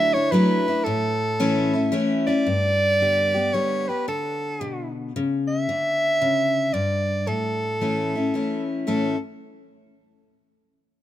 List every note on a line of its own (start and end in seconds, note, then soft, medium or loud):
0.00 0.29 D3 medium
0.00 0.13 F#3 medium
0.00 0.13 A3 medium
0.00 0.14 D4 medium
0.00 0.13 E4 loud
0.00 0.15 E5 loud
0.13 0.32 D4 medium
0.13 0.33 E4 medium
0.13 0.33 C#5 loud
0.32 0.66 F#3 medium
0.32 0.66 A3 medium
0.32 0.67 D4 medium
0.32 0.67 E4 loud
0.32 0.86 B4 loud
0.68 0.87 D4 soft
0.68 0.86 E4 medium
0.84 1.89 A2 medium
0.84 1.92 A4 medium
1.40 1.73 E3 medium
1.40 1.73 A3 medium
1.40 1.73 C#4 loud
1.40 1.72 E4 medium
1.73 1.91 C#4 soft
1.73 1.92 E4 medium
1.92 2.26 E3 medium
1.92 2.26 A3 medium
1.92 2.26 C#4 medium
1.92 2.26 E4 medium
2.27 2.46 C#4 medium
2.27 2.46 E4 medium
2.27 3.55 D5 loud
2.46 3.49 G2 medium
3.00 3.33 D3 medium
3.00 3.34 G3 medium
3.00 3.34 B3 medium
3.00 3.33 G4 medium
3.34 3.53 B3 soft
3.34 3.52 G4 medium
3.53 3.86 D3 medium
3.53 3.87 G3 medium
3.53 3.87 B3 medium
3.53 3.87 G4 medium
3.53 3.90 C#5 medium
3.88 4.07 B3 soft
3.88 4.06 G4 medium
3.88 4.07 B4 medium
4.08 5.10 D3 medium
4.08 4.91 A4 medium
4.61 5.12 B2 medium
5.16 5.66 C#3 medium
5.48 6.75 E5 loud
5.69 6.71 D3 medium
6.22 6.72 C#3 medium
6.73 7.25 G2 medium
6.73 7.29 D5 medium
7.27 8.30 A2 medium
7.27 8.68 A4 medium
7.81 8.14 E3 medium
7.81 8.14 A3 medium
7.81 8.14 C#4 medium
7.81 8.14 E4 medium
8.15 8.34 C#4 soft
8.15 8.33 E4 medium
8.34 8.85 E3 soft
8.34 8.85 A3 medium
8.34 8.86 C#4 medium
8.34 8.86 E4 medium
8.87 9.14 A2 medium
8.87 9.14 E3 medium
8.87 9.15 A3 medium
8.87 9.15 C#4 medium
8.87 9.15 E4 medium
8.87 9.19 A4 medium